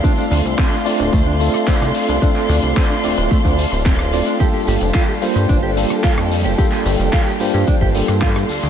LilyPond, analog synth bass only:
\new Staff \with { instrumentName = "Analog synth bass" } { \clef bass \time 4/4 \key g \minor \tempo 4 = 110 r8 d,16 c,16 r8. d,,16 d,8. r8 c,16 r16 c,16 | r8 d,16 c,16 r8 d,,16 d,,16 r16 d,8 d,,16 d,,8. r16 | r8 g,,16 f,,16 r8. g,16 g,,8. r8 f,8 f,,16 | r8 g,,16 f,,16 r8 g,16 g,16 r16 g,,8 g,8. d,16 d,16 | }